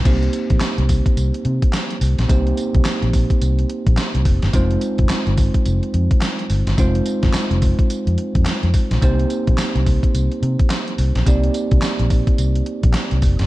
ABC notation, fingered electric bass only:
X:1
M:4/4
L:1/16
Q:"Swing 16ths" 1/4=107
K:Cm
V:1 name="Fingered electric bass" clef=bass
C,,2 z B,,, z C,,2 z C,, z C, z3 C,, B,,, | C,,2 z C,, z B,,,2 z C,,2 z B,,, z C,, F,,, G,,, | F,,,2 z F,,, z G,,,2 z F,,, z F,, z3 G,,, G,,, | F,,,2 z G,,, z F,,,2 z2 F,, z F,, z F,, z B,,, |
C,,2 z B,,, z C,,2 z C,, z C, z3 C,, B,,, | C,,2 z C,, z B,,,2 z C,,2 z B,,, z C,, F,,, G,,, |]